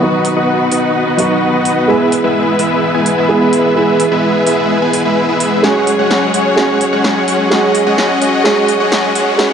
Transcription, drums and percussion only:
0.25 open hi-hat loud
0.72 open hi-hat loud
1.19 open hi-hat loud
1.65 open hi-hat loud
2.12 open hi-hat loud
2.59 open hi-hat loud
3.06 open hi-hat loud
3.53 open hi-hat loud
4.00 open hi-hat loud
4.47 open hi-hat loud
4.93 open hi-hat loud
5.40 open hi-hat loud
5.64 snare soft
5.87 open hi-hat loud
6.11 snare medium
6.34 open hi-hat loud
6.58 snare medium
6.81 open hi-hat loud
7.04 snare medium
7.28 open hi-hat loud
7.51 snare medium
7.75 open hi-hat loud
7.98 snare medium
8.22 open hi-hat loud
8.45 snare medium
8.68 open hi-hat loud
8.92 snare medium
9.15 open hi-hat loud
9.39 snare medium

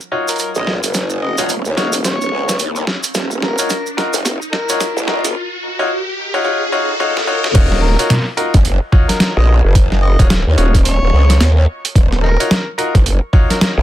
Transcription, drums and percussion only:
0.01 maracas soft
0.28 closed hi-hat soft
0.28 maracas medium
0.31 closed hi-hat soft
0.36 closed hi-hat soft
0.36 maracas medium
0.40 closed hi-hat medium
0.55 maracas soft
0.67 snare medium
0.83 closed hi-hat medium
0.83 maracas medium
0.94 snare medium
0.94 closed hi-hat medium
0.94 maracas medium
1.10 maracas soft
1.38 closed hi-hat medium
1.38 maracas medium
1.49 closed hi-hat medium
1.49 maracas medium
1.65 maracas soft
1.77 snare medium
1.77 closed hi-hat soft
1.93 closed hi-hat medium
1.93 maracas medium
2.04 snare medium
2.04 closed hi-hat medium
2.04 maracas medium
2.21 maracas soft
2.49 snare medium
2.49 closed hi-hat medium
2.49 maracas medium
2.59 closed hi-hat medium
2.59 maracas medium
2.76 maracas soft
2.87 snare medium
3.03 closed hi-hat medium
3.03 maracas medium
3.14 snare medium
3.14 closed hi-hat medium
3.14 maracas medium
3.31 maracas soft
3.42 snare medium
3.58 closed hi-hat medium
3.58 maracas medium
3.69 snare medium
3.69 closed hi-hat medium
3.69 maracas medium
3.86 maracas soft
3.98 snare medium
3.98 closed hi-hat soft
4.13 closed hi-hat medium
4.13 maracas medium
4.25 snare medium
4.25 closed hi-hat medium
4.25 maracas medium
4.42 maracas soft
4.53 snare medium
4.69 closed hi-hat medium
4.69 maracas medium
4.80 snare medium
4.80 closed hi-hat medium
4.80 maracas medium
4.97 maracas soft
5.08 snare medium
5.24 closed hi-hat medium
5.24 maracas medium
7.00 high tom medium
7.17 snare medium
7.44 snare medium
7.55 kick loud
7.55 closed hi-hat medium
7.55 crash loud
7.72 snare soft
7.99 closed hi-hat medium
8.10 snare loud
8.10 closed hi-hat medium
8.37 closed hi-hat soft
8.54 kick loud
8.54 snare soft
8.54 closed hi-hat medium
8.65 closed hi-hat medium
8.93 kick loud
9.09 snare soft
9.09 closed hi-hat medium
9.20 snare loud
9.20 closed hi-hat medium
9.75 kick loud
9.75 closed hi-hat medium
9.92 snare soft
10.19 kick loud
10.19 closed hi-hat medium
10.30 snare loud
10.30 closed hi-hat medium
10.58 closed hi-hat soft
10.74 kick medium
10.74 snare soft
10.74 closed hi-hat medium
10.85 closed hi-hat medium
11.30 snare soft
11.30 closed hi-hat medium
11.41 snare loud
11.41 closed hi-hat medium
11.85 closed hi-hat medium
11.96 kick loud
11.96 closed hi-hat medium
12.12 snare soft
12.40 closed hi-hat medium
12.51 snare loud
12.51 closed hi-hat medium
12.79 closed hi-hat soft
12.95 kick loud
12.95 snare soft
12.95 closed hi-hat medium
13.06 closed hi-hat medium
13.33 kick loud
13.50 snare soft
13.50 closed hi-hat medium
13.61 snare loud
13.61 closed hi-hat medium

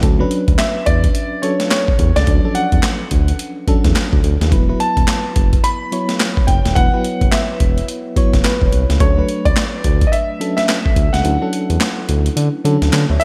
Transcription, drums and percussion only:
0.03 kick loud
0.03 closed hi-hat medium
0.31 closed hi-hat medium
0.48 kick medium
0.48 closed hi-hat soft
0.59 snare loud
0.59 clap medium
0.59 closed hi-hat medium
0.86 kick medium
0.86 closed hi-hat medium
1.04 kick medium
1.04 closed hi-hat medium
1.15 closed hi-hat medium
1.43 closed hi-hat medium
1.60 snare medium
1.60 closed hi-hat medium
1.71 snare loud
1.71 clap medium
1.71 closed hi-hat medium
1.88 kick medium
1.99 kick medium
1.99 closed hi-hat medium
2.16 snare medium
2.16 closed hi-hat medium
2.27 kick loud
2.27 closed hi-hat medium
2.55 closed hi-hat medium
2.72 kick medium
2.72 closed hi-hat soft
2.83 snare loud
2.83 clap medium
2.83 closed hi-hat medium
3.11 kick medium
3.11 closed hi-hat medium
3.28 closed hi-hat medium
3.39 closed hi-hat medium
3.68 kick medium
3.68 closed hi-hat medium
3.84 kick medium
3.84 snare medium
3.84 closed hi-hat medium
3.96 snare loud
3.96 clap medium
3.96 closed hi-hat medium
4.13 kick medium
4.24 closed hi-hat medium
4.41 snare medium
4.41 closed hi-hat medium
4.52 kick loud
4.52 closed hi-hat medium
4.80 closed hi-hat medium
4.97 kick medium
4.97 closed hi-hat soft
5.08 snare loud
5.08 clap medium
5.08 closed hi-hat medium
5.36 kick medium
5.36 closed hi-hat medium
5.53 kick medium
5.53 closed hi-hat medium
5.64 closed hi-hat medium
5.92 closed hi-hat medium
6.09 snare medium
6.09 closed hi-hat medium
6.20 snare loud
6.20 clap medium
6.20 closed hi-hat medium
6.37 kick medium
6.48 kick medium
6.48 closed hi-hat medium
6.65 snare medium
6.65 closed hi-hat medium
6.76 kick loud
6.76 closed hi-hat medium
7.04 closed hi-hat medium
7.21 kick loud
7.21 closed hi-hat soft
7.32 snare loud
7.32 clap medium
7.32 closed hi-hat medium
7.60 kick medium
7.60 closed hi-hat medium
7.78 closed hi-hat medium
7.88 closed hi-hat medium
8.16 kick loud
8.16 closed hi-hat medium
8.33 kick medium
8.33 snare medium
8.33 closed hi-hat medium
8.44 snare loud
8.44 clap medium
8.44 closed hi-hat medium
8.62 kick medium
8.73 closed hi-hat medium
8.90 snare medium
8.90 closed hi-hat medium
9.00 kick loud
9.00 closed hi-hat medium
9.29 closed hi-hat medium
9.45 kick medium
9.45 closed hi-hat soft
9.56 snare loud
9.56 clap medium
9.56 closed hi-hat medium
9.84 kick medium
9.84 closed hi-hat medium
10.01 kick medium
10.01 closed hi-hat medium
10.13 closed hi-hat medium
10.41 closed hi-hat medium
10.58 snare medium
10.58 closed hi-hat medium
10.69 snare loud
10.69 clap medium
10.69 closed hi-hat medium
10.86 kick medium
10.96 kick medium
10.96 closed hi-hat medium
11.14 snare medium
11.14 closed hi-hat medium
11.25 closed hi-hat medium
11.53 closed hi-hat medium
11.70 closed hi-hat soft
11.81 snare loud
11.81 clap medium
11.81 closed hi-hat medium
12.09 closed hi-hat medium
12.26 closed hi-hat medium
12.37 closed hi-hat medium
12.65 closed hi-hat medium
12.82 snare medium
12.82 closed hi-hat medium
12.93 snare loud
12.93 clap medium
12.93 closed hi-hat medium
13.21 closed hi-hat medium

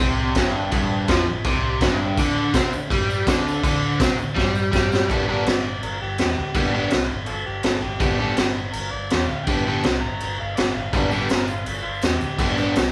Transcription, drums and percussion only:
0.35 kick loud
0.35 snare loud
0.35 crash medium
0.72 kick loud
0.72 crash medium
1.08 kick loud
1.08 snare loud
1.08 crash medium
1.44 kick loud
1.44 crash medium
1.81 kick loud
1.81 snare loud
1.81 crash medium
2.17 kick loud
2.17 tambourine medium
2.17 crash medium
2.37 tambourine soft
2.54 kick loud
2.54 snare loud
2.54 tambourine loud
2.54 crash medium
2.73 tambourine medium
2.90 kick loud
2.90 tambourine soft
2.90 crash medium
3.10 tambourine medium
3.27 kick loud
3.27 snare loud
3.27 tambourine loud
3.27 crash medium
3.48 tambourine medium
3.64 kick loud
3.64 tambourine medium
3.64 crash medium
3.84 tambourine soft
3.92 tambourine soft
4.00 kick loud
4.00 snare loud
4.00 tambourine loud
4.00 crash medium
4.18 tambourine medium
4.28 tambourine soft
4.37 kick loud
4.37 snare medium
4.37 tambourine soft
4.46 tambourine soft
4.55 tambourine medium
4.73 kick loud
4.73 snare medium
4.73 tambourine loud
4.92 snare loud
4.92 tambourine medium
5.10 kick loud
5.10 crash medium
5.46 snare loud
5.46 crash medium
5.83 crash medium
6.18 snare loud
6.18 crash medium
6.54 kick loud
6.54 crash medium
6.90 snare loud
6.90 crash medium
7.26 crash medium
7.63 snare loud
7.63 crash medium
8.00 kick loud
8.00 crash medium
8.37 snare loud
8.37 crash medium
8.73 crash medium
9.10 snare loud
9.10 crash medium
9.47 kick loud
9.47 crash medium
9.83 snare loud
9.83 crash medium
10.20 crash medium
10.57 snare loud
10.57 crash medium
10.93 kick loud
10.93 tambourine soft
10.93 crash medium
11.11 tambourine medium
11.20 tambourine soft
11.29 snare loud
11.29 tambourine loud
11.29 crash medium
11.48 tambourine medium
11.66 tambourine soft
11.66 crash medium
11.74 tambourine medium
11.93 tambourine soft
12.02 snare loud
12.02 tambourine loud
12.02 crash medium
12.21 tambourine medium
12.39 kick loud
12.39 tambourine soft
12.39 crash medium
12.58 tambourine medium
12.75 snare loud
12.75 tambourine loud
12.75 crash medium

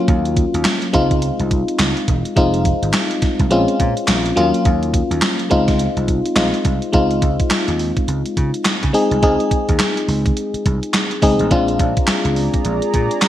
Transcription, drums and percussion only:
0.08 kick loud
0.08 closed hi-hat medium
0.25 closed hi-hat soft
0.37 kick loud
0.37 closed hi-hat medium
0.54 closed hi-hat medium
0.65 snare loud
0.65 clap medium
0.65 closed hi-hat medium
0.82 closed hi-hat soft
0.94 kick medium
0.94 closed hi-hat medium
1.11 kick medium
1.11 closed hi-hat soft
1.22 closed hi-hat medium
1.40 closed hi-hat medium
1.51 kick medium
1.51 closed hi-hat medium
1.68 closed hi-hat medium
1.79 snare loud
1.79 clap medium
1.79 closed hi-hat medium
1.97 closed hi-hat soft
2.08 kick loud
2.08 closed hi-hat medium
2.25 closed hi-hat medium
2.37 kick loud
2.37 closed hi-hat medium
2.54 closed hi-hat soft
2.65 kick medium
2.65 closed hi-hat medium
2.83 closed hi-hat medium
2.93 snare loud
2.93 clap medium
2.93 closed hi-hat medium
3.11 closed hi-hat medium
3.22 kick medium
3.22 snare medium
3.22 closed hi-hat medium
3.39 kick medium
3.39 closed hi-hat soft
3.51 closed hi-hat medium
3.68 closed hi-hat medium
3.80 kick medium
3.80 closed hi-hat medium
3.97 closed hi-hat medium
4.08 snare loud
4.08 clap medium
4.08 closed hi-hat medium
4.26 closed hi-hat soft
4.37 closed hi-hat medium
4.54 closed hi-hat medium
4.65 kick loud
4.65 closed hi-hat medium
4.83 closed hi-hat soft
4.94 kick medium
4.94 closed hi-hat medium
5.11 closed hi-hat medium
5.22 snare loud
5.22 clap loud
5.22 closed hi-hat medium
5.39 closed hi-hat medium
5.51 kick medium
5.51 closed hi-hat medium
5.68 kick medium
5.68 snare medium
5.68 closed hi-hat soft
5.79 closed hi-hat medium
5.97 closed hi-hat medium
6.08 kick medium
6.08 closed hi-hat medium
6.26 closed hi-hat medium
6.36 snare loud
6.36 clap medium
6.36 closed hi-hat medium
6.54 closed hi-hat soft
6.65 kick medium
6.65 closed hi-hat medium
6.82 closed hi-hat soft
6.93 kick loud
6.93 closed hi-hat medium
7.11 closed hi-hat soft
7.22 kick medium
7.22 closed hi-hat medium
7.40 kick loud
7.40 closed hi-hat medium
7.50 snare loud
7.50 clap loud
7.50 closed hi-hat medium
7.68 closed hi-hat medium
7.79 open hi-hat medium
7.97 kick medium
7.97 closed hi-hat soft
8.08 closed hi-hat medium
8.26 closed hi-hat medium
8.37 kick medium
8.37 closed hi-hat medium
8.54 closed hi-hat medium
8.65 snare loud
8.65 clap loud
8.65 closed hi-hat medium
8.83 kick medium
8.83 closed hi-hat medium
8.94 open hi-hat medium
9.11 closed hi-hat medium
9.23 kick loud
9.23 closed hi-hat medium
9.40 closed hi-hat soft
9.51 kick medium
9.51 closed hi-hat medium
9.69 kick medium
9.69 closed hi-hat medium
9.79 snare loud
9.79 clap loud
9.79 closed hi-hat medium
9.97 closed hi-hat medium
10.09 open hi-hat medium
10.26 kick medium
10.26 closed hi-hat soft
10.37 closed hi-hat medium
10.54 closed hi-hat medium
10.66 kick medium
10.66 closed hi-hat medium
10.83 closed hi-hat medium
10.94 snare loud
10.94 clap medium
10.94 closed hi-hat medium
11.11 closed hi-hat medium
11.22 kick loud
11.22 open hi-hat medium
11.39 closed hi-hat medium
11.51 kick loud
11.51 closed hi-hat medium
11.68 closed hi-hat soft
11.79 kick medium
11.79 closed hi-hat medium
11.97 kick loud
11.97 closed hi-hat medium
12.07 snare loud
12.07 clap loud
12.07 closed hi-hat medium
12.25 closed hi-hat medium
12.36 open hi-hat medium
12.54 kick medium
12.54 closed hi-hat soft
12.65 closed hi-hat medium
12.82 closed hi-hat medium
12.94 kick medium
12.94 closed hi-hat medium
13.11 closed hi-hat medium
13.22 snare loud
13.22 clap medium
13.22 closed hi-hat medium

